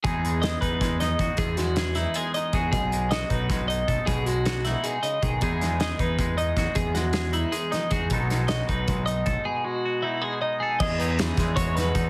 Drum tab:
CC |-------|-------|-------|-------|
HH |xxxxxxx|xxxxxxx|xxxxxxx|xxxxxxx|
SD |--o-oo-|-ooo---|--o-o--|--oo---|
BD |o--oo-o|o-----o|o--oo-o|o-----o|

CC |-------|-------|-------|-------|
HH |xxxxxxx|xxxxxxx|xxxxxxx|-------|
SD |-oo---o|-oo--o-|-oo----|-------|
BD |o--oo-o|o-----o|o--oo-o|-------|

CC |x------|
HH |-xxxxxx|
SD |--oo-o-|
BD |o--oo-o|